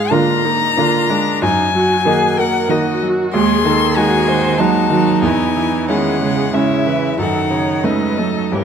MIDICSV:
0, 0, Header, 1, 6, 480
1, 0, Start_track
1, 0, Key_signature, -6, "minor"
1, 0, Tempo, 654308
1, 1039, Time_signature, 3, 2, 24, 8
1, 1512, Tempo, 632244
1, 2475, Key_signature, 4, "minor"
1, 3912, Tempo, 654308
1, 5832, Tempo, 682594
1, 6395, End_track
2, 0, Start_track
2, 0, Title_t, "Violin"
2, 0, Program_c, 0, 40
2, 0, Note_on_c, 0, 77, 78
2, 85, Note_on_c, 0, 82, 86
2, 96, Note_off_c, 0, 77, 0
2, 1043, Note_off_c, 0, 82, 0
2, 1055, Note_on_c, 0, 80, 89
2, 1766, Note_on_c, 0, 78, 82
2, 1777, Note_off_c, 0, 80, 0
2, 2000, Note_on_c, 0, 75, 68
2, 2011, Note_off_c, 0, 78, 0
2, 2236, Note_off_c, 0, 75, 0
2, 2478, Note_on_c, 0, 84, 84
2, 2955, Note_on_c, 0, 80, 82
2, 2966, Note_off_c, 0, 84, 0
2, 3424, Note_on_c, 0, 81, 75
2, 3435, Note_off_c, 0, 80, 0
2, 3909, Note_off_c, 0, 81, 0
2, 3913, Note_on_c, 0, 80, 69
2, 4389, Note_off_c, 0, 80, 0
2, 4404, Note_on_c, 0, 78, 66
2, 4874, Note_on_c, 0, 76, 60
2, 4885, Note_off_c, 0, 78, 0
2, 5355, Note_off_c, 0, 76, 0
2, 5369, Note_on_c, 0, 78, 59
2, 5841, Note_on_c, 0, 75, 57
2, 5851, Note_off_c, 0, 78, 0
2, 6323, Note_on_c, 0, 70, 44
2, 6333, Note_off_c, 0, 75, 0
2, 6395, Note_off_c, 0, 70, 0
2, 6395, End_track
3, 0, Start_track
3, 0, Title_t, "Viola"
3, 0, Program_c, 1, 41
3, 0, Note_on_c, 1, 68, 61
3, 78, Note_on_c, 1, 65, 54
3, 89, Note_off_c, 1, 68, 0
3, 326, Note_on_c, 1, 63, 57
3, 337, Note_off_c, 1, 65, 0
3, 565, Note_on_c, 1, 65, 63
3, 576, Note_off_c, 1, 63, 0
3, 805, Note_on_c, 1, 62, 60
3, 816, Note_off_c, 1, 65, 0
3, 1043, Note_on_c, 1, 63, 59
3, 1054, Note_off_c, 1, 62, 0
3, 1274, Note_off_c, 1, 63, 0
3, 1279, Note_on_c, 1, 66, 54
3, 1508, Note_off_c, 1, 66, 0
3, 1514, Note_on_c, 1, 68, 66
3, 1749, Note_on_c, 1, 70, 62
3, 1760, Note_off_c, 1, 68, 0
3, 1992, Note_on_c, 1, 66, 65
3, 2003, Note_off_c, 1, 70, 0
3, 2480, Note_on_c, 1, 68, 62
3, 2492, Note_off_c, 1, 66, 0
3, 2725, Note_on_c, 1, 69, 55
3, 2737, Note_off_c, 1, 68, 0
3, 2957, Note_on_c, 1, 68, 60
3, 2968, Note_off_c, 1, 69, 0
3, 3198, Note_on_c, 1, 72, 66
3, 3210, Note_off_c, 1, 68, 0
3, 3443, Note_on_c, 1, 63, 58
3, 3455, Note_off_c, 1, 72, 0
3, 3667, Note_off_c, 1, 63, 0
3, 3671, Note_on_c, 1, 66, 57
3, 3919, Note_on_c, 1, 64, 54
3, 3930, Note_off_c, 1, 66, 0
3, 4404, Note_on_c, 1, 68, 53
3, 4415, Note_off_c, 1, 64, 0
3, 4879, Note_on_c, 1, 73, 54
3, 4890, Note_off_c, 1, 68, 0
3, 5120, Note_on_c, 1, 71, 49
3, 5131, Note_off_c, 1, 73, 0
3, 5349, Note_off_c, 1, 71, 0
3, 5354, Note_on_c, 1, 69, 45
3, 5585, Note_on_c, 1, 73, 44
3, 5596, Note_off_c, 1, 69, 0
3, 5828, Note_on_c, 1, 71, 44
3, 5839, Note_off_c, 1, 73, 0
3, 6069, Note_on_c, 1, 69, 44
3, 6079, Note_off_c, 1, 71, 0
3, 6315, Note_on_c, 1, 67, 40
3, 6325, Note_off_c, 1, 69, 0
3, 6395, Note_off_c, 1, 67, 0
3, 6395, End_track
4, 0, Start_track
4, 0, Title_t, "Violin"
4, 0, Program_c, 2, 40
4, 89, Note_on_c, 2, 70, 58
4, 446, Note_off_c, 2, 70, 0
4, 564, Note_on_c, 2, 70, 59
4, 918, Note_off_c, 2, 70, 0
4, 1521, Note_on_c, 2, 70, 62
4, 1874, Note_off_c, 2, 70, 0
4, 2001, Note_on_c, 2, 70, 61
4, 2355, Note_off_c, 2, 70, 0
4, 2491, Note_on_c, 2, 68, 59
4, 2966, Note_on_c, 2, 66, 49
4, 2978, Note_off_c, 2, 68, 0
4, 3429, Note_on_c, 2, 63, 59
4, 3440, Note_off_c, 2, 66, 0
4, 4395, Note_on_c, 2, 61, 44
4, 4406, Note_off_c, 2, 63, 0
4, 4875, Note_off_c, 2, 61, 0
4, 4881, Note_on_c, 2, 64, 50
4, 5360, Note_on_c, 2, 63, 44
4, 5371, Note_off_c, 2, 64, 0
4, 5833, Note_off_c, 2, 63, 0
4, 5839, Note_on_c, 2, 63, 35
4, 6315, Note_on_c, 2, 61, 34
4, 6326, Note_off_c, 2, 63, 0
4, 6395, Note_off_c, 2, 61, 0
4, 6395, End_track
5, 0, Start_track
5, 0, Title_t, "Grand piano"
5, 0, Program_c, 3, 0
5, 0, Control_c, 3, 64, 127
5, 0, Note_on_c, 3, 44, 53
5, 0, Note_on_c, 3, 56, 43
5, 83, Note_on_c, 3, 58, 43
5, 85, Note_on_c, 3, 65, 44
5, 86, Note_on_c, 3, 62, 44
5, 231, Note_off_c, 3, 56, 0
5, 302, Note_off_c, 3, 58, 0
5, 303, Note_off_c, 3, 65, 0
5, 304, Note_off_c, 3, 62, 0
5, 329, Note_on_c, 3, 58, 44
5, 555, Note_off_c, 3, 58, 0
5, 566, Note_on_c, 3, 58, 41
5, 568, Note_on_c, 3, 62, 42
5, 574, Note_on_c, 3, 65, 49
5, 779, Note_off_c, 3, 58, 0
5, 780, Note_off_c, 3, 62, 0
5, 783, Note_off_c, 3, 65, 0
5, 805, Note_on_c, 3, 56, 44
5, 1012, Note_off_c, 3, 44, 0
5, 1041, Note_off_c, 3, 56, 0
5, 1043, Note_on_c, 3, 42, 59
5, 1050, Control_c, 3, 64, 0
5, 1167, Control_c, 3, 64, 127
5, 1283, Note_on_c, 3, 54, 44
5, 1513, Note_on_c, 3, 58, 46
5, 1519, Note_on_c, 3, 63, 47
5, 1520, Note_on_c, 3, 66, 45
5, 1660, Note_off_c, 3, 54, 0
5, 1730, Note_off_c, 3, 58, 0
5, 1733, Note_off_c, 3, 63, 0
5, 1733, Note_off_c, 3, 66, 0
5, 1759, Note_on_c, 3, 58, 43
5, 1992, Note_off_c, 3, 58, 0
5, 2003, Note_on_c, 3, 58, 40
5, 2006, Note_on_c, 3, 66, 46
5, 2007, Note_on_c, 3, 63, 41
5, 2214, Note_off_c, 3, 58, 0
5, 2216, Note_off_c, 3, 63, 0
5, 2216, Note_off_c, 3, 66, 0
5, 2243, Note_on_c, 3, 54, 46
5, 2447, Note_off_c, 3, 42, 0
5, 2480, Note_off_c, 3, 54, 0
5, 2481, Note_on_c, 3, 39, 63
5, 2488, Control_c, 3, 64, 0
5, 2585, Control_c, 3, 64, 127
5, 2719, Note_on_c, 3, 51, 46
5, 2958, Note_on_c, 3, 56, 42
5, 2959, Note_on_c, 3, 63, 46
5, 2962, Note_on_c, 3, 66, 50
5, 3099, Note_off_c, 3, 51, 0
5, 3170, Note_off_c, 3, 56, 0
5, 3171, Note_off_c, 3, 63, 0
5, 3173, Note_off_c, 3, 66, 0
5, 3195, Note_on_c, 3, 56, 38
5, 3424, Note_off_c, 3, 56, 0
5, 3435, Note_on_c, 3, 56, 41
5, 3436, Note_on_c, 3, 63, 39
5, 3439, Note_on_c, 3, 66, 44
5, 3646, Note_off_c, 3, 56, 0
5, 3647, Note_off_c, 3, 63, 0
5, 3648, Note_off_c, 3, 66, 0
5, 3665, Note_on_c, 3, 51, 41
5, 3885, Note_off_c, 3, 39, 0
5, 3911, Note_off_c, 3, 51, 0
5, 3911, Note_on_c, 3, 40, 49
5, 3925, Control_c, 3, 64, 0
5, 4021, Control_c, 3, 64, 127
5, 4166, Note_on_c, 3, 52, 39
5, 4404, Note_on_c, 3, 56, 37
5, 4408, Note_on_c, 3, 61, 35
5, 4411, Note_on_c, 3, 64, 42
5, 4547, Note_off_c, 3, 52, 0
5, 4617, Note_off_c, 3, 56, 0
5, 4619, Note_off_c, 3, 61, 0
5, 4621, Note_off_c, 3, 64, 0
5, 4641, Note_on_c, 3, 56, 33
5, 4864, Note_off_c, 3, 56, 0
5, 4875, Note_on_c, 3, 56, 35
5, 4881, Note_on_c, 3, 61, 37
5, 4883, Note_on_c, 3, 64, 34
5, 5092, Note_off_c, 3, 56, 0
5, 5096, Note_off_c, 3, 61, 0
5, 5097, Note_off_c, 3, 64, 0
5, 5119, Note_on_c, 3, 52, 37
5, 5326, Note_off_c, 3, 40, 0
5, 5352, Note_on_c, 3, 42, 44
5, 5357, Note_off_c, 3, 52, 0
5, 5367, Control_c, 3, 64, 0
5, 5468, Control_c, 3, 64, 127
5, 5587, Note_on_c, 3, 49, 31
5, 5831, Note_on_c, 3, 57, 29
5, 5833, Note_on_c, 3, 61, 28
5, 5834, Note_on_c, 3, 63, 32
5, 5969, Note_off_c, 3, 49, 0
5, 6043, Note_off_c, 3, 57, 0
5, 6044, Note_off_c, 3, 61, 0
5, 6044, Note_off_c, 3, 63, 0
5, 6069, Note_on_c, 3, 57, 25
5, 6279, Note_off_c, 3, 42, 0
5, 6309, Note_on_c, 3, 43, 36
5, 6310, Note_off_c, 3, 57, 0
5, 6322, Control_c, 3, 64, 0
5, 6395, Note_off_c, 3, 43, 0
5, 6395, End_track
6, 0, Start_track
6, 0, Title_t, "Cello"
6, 0, Program_c, 4, 42
6, 83, Note_on_c, 4, 50, 64
6, 443, Note_off_c, 4, 50, 0
6, 573, Note_on_c, 4, 50, 62
6, 922, Note_off_c, 4, 50, 0
6, 1510, Note_on_c, 4, 51, 61
6, 1869, Note_off_c, 4, 51, 0
6, 1990, Note_on_c, 4, 51, 55
6, 2349, Note_off_c, 4, 51, 0
6, 2474, Note_on_c, 4, 56, 61
6, 2700, Note_off_c, 4, 56, 0
6, 2730, Note_on_c, 4, 51, 58
6, 3432, Note_on_c, 4, 54, 56
6, 3444, Note_off_c, 4, 51, 0
6, 3668, Note_off_c, 4, 54, 0
6, 3677, Note_on_c, 4, 54, 56
6, 3932, Note_on_c, 4, 52, 47
6, 3943, Note_off_c, 4, 54, 0
6, 4404, Note_on_c, 4, 51, 53
6, 4415, Note_off_c, 4, 52, 0
6, 4635, Note_off_c, 4, 51, 0
6, 4639, Note_on_c, 4, 49, 55
6, 4872, Note_off_c, 4, 49, 0
6, 4881, Note_on_c, 4, 49, 47
6, 5349, Note_off_c, 4, 49, 0
6, 5362, Note_on_c, 4, 51, 42
6, 5833, Note_on_c, 4, 56, 38
6, 5844, Note_off_c, 4, 51, 0
6, 6065, Note_on_c, 4, 54, 38
6, 6076, Note_off_c, 4, 56, 0
6, 6310, Note_on_c, 4, 52, 38
6, 6320, Note_off_c, 4, 54, 0
6, 6395, Note_off_c, 4, 52, 0
6, 6395, End_track
0, 0, End_of_file